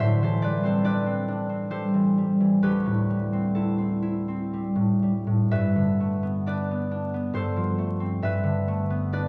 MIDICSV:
0, 0, Header, 1, 2, 480
1, 0, Start_track
1, 0, Key_signature, 1, "major"
1, 0, Tempo, 853485
1, 6, Time_signature, 3, 2, 24, 8
1, 966, Tempo, 900901
1, 1446, Tempo, 952381
1, 2406, Tempo, 1015228
1, 2886, Tempo, 902256
1, 3846, Tempo, 874636
1, 4911, End_track
2, 0, Start_track
2, 0, Title_t, "Harp"
2, 0, Program_c, 0, 46
2, 0, Note_on_c, 0, 45, 61
2, 0, Note_on_c, 0, 59, 40
2, 0, Note_on_c, 0, 62, 45
2, 0, Note_on_c, 0, 64, 53
2, 0, Note_on_c, 0, 67, 56
2, 0, Note_on_c, 0, 69, 56
2, 0, Note_on_c, 0, 71, 63
2, 0, Note_on_c, 0, 72, 67
2, 0, Note_on_c, 0, 74, 87
2, 0, Note_on_c, 0, 76, 91
2, 99, Note_off_c, 0, 59, 0
2, 119, Note_off_c, 0, 72, 0
2, 125, Note_on_c, 0, 52, 42
2, 128, Note_on_c, 0, 72, 70
2, 129, Note_off_c, 0, 69, 0
2, 136, Note_on_c, 0, 69, 54
2, 230, Note_off_c, 0, 74, 0
2, 237, Note_on_c, 0, 74, 77
2, 241, Note_off_c, 0, 71, 0
2, 242, Note_on_c, 0, 55, 45
2, 248, Note_on_c, 0, 71, 61
2, 331, Note_off_c, 0, 72, 0
2, 355, Note_on_c, 0, 60, 49
2, 365, Note_off_c, 0, 69, 0
2, 365, Note_on_c, 0, 72, 71
2, 371, Note_on_c, 0, 69, 53
2, 445, Note_off_c, 0, 74, 0
2, 467, Note_off_c, 0, 62, 0
2, 473, Note_on_c, 0, 62, 49
2, 476, Note_off_c, 0, 71, 0
2, 477, Note_on_c, 0, 74, 80
2, 483, Note_on_c, 0, 71, 58
2, 568, Note_off_c, 0, 72, 0
2, 591, Note_off_c, 0, 60, 0
2, 597, Note_on_c, 0, 60, 44
2, 714, Note_off_c, 0, 62, 0
2, 721, Note_on_c, 0, 62, 48
2, 833, Note_off_c, 0, 60, 0
2, 840, Note_on_c, 0, 60, 42
2, 953, Note_off_c, 0, 55, 0
2, 956, Note_off_c, 0, 69, 0
2, 958, Note_on_c, 0, 55, 46
2, 961, Note_on_c, 0, 72, 69
2, 963, Note_on_c, 0, 69, 54
2, 1077, Note_off_c, 0, 52, 0
2, 1084, Note_on_c, 0, 52, 40
2, 1205, Note_off_c, 0, 55, 0
2, 1211, Note_on_c, 0, 55, 39
2, 1325, Note_off_c, 0, 52, 0
2, 1331, Note_on_c, 0, 52, 38
2, 1444, Note_off_c, 0, 71, 0
2, 1447, Note_off_c, 0, 64, 0
2, 1449, Note_on_c, 0, 38, 50
2, 1450, Note_off_c, 0, 67, 0
2, 1451, Note_on_c, 0, 71, 69
2, 1456, Note_on_c, 0, 67, 54
2, 1459, Note_off_c, 0, 45, 0
2, 1469, Note_off_c, 0, 52, 0
2, 1567, Note_on_c, 0, 45, 36
2, 1683, Note_off_c, 0, 55, 0
2, 1689, Note_on_c, 0, 55, 39
2, 1797, Note_off_c, 0, 60, 0
2, 1803, Note_on_c, 0, 60, 39
2, 1909, Note_off_c, 0, 69, 0
2, 1915, Note_on_c, 0, 69, 49
2, 1921, Note_on_c, 0, 64, 35
2, 2026, Note_off_c, 0, 60, 0
2, 2032, Note_on_c, 0, 60, 35
2, 2088, Note_off_c, 0, 76, 0
2, 2148, Note_off_c, 0, 64, 0
2, 2154, Note_on_c, 0, 64, 42
2, 2261, Note_off_c, 0, 71, 0
2, 2277, Note_off_c, 0, 60, 0
2, 2283, Note_on_c, 0, 60, 38
2, 2405, Note_off_c, 0, 55, 0
2, 2411, Note_on_c, 0, 55, 41
2, 2510, Note_off_c, 0, 45, 0
2, 2512, Note_off_c, 0, 74, 0
2, 2516, Note_on_c, 0, 45, 34
2, 2639, Note_off_c, 0, 55, 0
2, 2644, Note_on_c, 0, 55, 40
2, 2717, Note_off_c, 0, 62, 0
2, 2752, Note_off_c, 0, 45, 0
2, 2758, Note_on_c, 0, 45, 37
2, 2874, Note_on_c, 0, 43, 54
2, 2874, Note_on_c, 0, 76, 78
2, 2876, Note_on_c, 0, 71, 58
2, 2899, Note_off_c, 0, 45, 0
2, 2903, Note_off_c, 0, 72, 0
2, 2906, Note_off_c, 0, 60, 0
2, 2908, Note_off_c, 0, 38, 0
2, 3001, Note_on_c, 0, 50, 37
2, 3133, Note_on_c, 0, 57, 40
2, 3253, Note_on_c, 0, 59, 45
2, 3379, Note_on_c, 0, 62, 46
2, 3380, Note_off_c, 0, 71, 0
2, 3383, Note_on_c, 0, 74, 71
2, 3386, Note_on_c, 0, 71, 52
2, 3418, Note_off_c, 0, 67, 0
2, 3503, Note_off_c, 0, 59, 0
2, 3509, Note_on_c, 0, 59, 39
2, 3611, Note_off_c, 0, 62, 0
2, 3617, Note_on_c, 0, 62, 45
2, 3732, Note_off_c, 0, 59, 0
2, 3738, Note_on_c, 0, 59, 42
2, 3836, Note_off_c, 0, 43, 0
2, 3842, Note_on_c, 0, 43, 58
2, 3847, Note_on_c, 0, 72, 78
2, 3850, Note_off_c, 0, 69, 0
2, 3856, Note_on_c, 0, 69, 60
2, 3858, Note_off_c, 0, 76, 0
2, 3859, Note_off_c, 0, 50, 0
2, 3861, Note_off_c, 0, 64, 0
2, 3867, Note_off_c, 0, 62, 0
2, 3869, Note_off_c, 0, 59, 0
2, 3869, Note_off_c, 0, 74, 0
2, 3872, Note_off_c, 0, 71, 0
2, 3967, Note_on_c, 0, 53, 43
2, 4081, Note_off_c, 0, 57, 0
2, 4088, Note_on_c, 0, 57, 46
2, 4207, Note_on_c, 0, 60, 44
2, 4324, Note_off_c, 0, 43, 0
2, 4330, Note_on_c, 0, 43, 57
2, 4333, Note_on_c, 0, 76, 86
2, 4336, Note_off_c, 0, 72, 0
2, 4338, Note_off_c, 0, 53, 0
2, 4340, Note_off_c, 0, 60, 0
2, 4342, Note_on_c, 0, 71, 67
2, 4445, Note_on_c, 0, 50, 47
2, 4573, Note_off_c, 0, 57, 0
2, 4580, Note_on_c, 0, 57, 50
2, 4702, Note_on_c, 0, 59, 48
2, 4715, Note_off_c, 0, 55, 0
2, 4822, Note_off_c, 0, 71, 0
2, 4824, Note_on_c, 0, 62, 56
2, 4827, Note_on_c, 0, 74, 78
2, 4829, Note_on_c, 0, 71, 64
2, 4911, Note_off_c, 0, 43, 0
2, 4911, Note_off_c, 0, 50, 0
2, 4911, Note_off_c, 0, 57, 0
2, 4911, Note_off_c, 0, 59, 0
2, 4911, Note_off_c, 0, 62, 0
2, 4911, Note_off_c, 0, 69, 0
2, 4911, Note_off_c, 0, 71, 0
2, 4911, Note_off_c, 0, 74, 0
2, 4911, Note_off_c, 0, 76, 0
2, 4911, End_track
0, 0, End_of_file